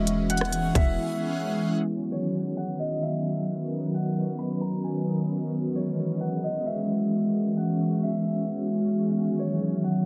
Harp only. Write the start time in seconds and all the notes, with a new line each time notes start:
Already playing: C#5 E5 F#5
0.30 F#5
0.76 E5
2.12 C#5
2.57 F#5
2.79 D#5
3.02 E5
3.94 F#5
4.38 B5
4.61 A#5
4.84 G#5
5.75 C#5
6.21 F#5
6.44 D#5
6.66 E5
7.57 F#5
8.03 E5
9.39 C#5
9.84 F#5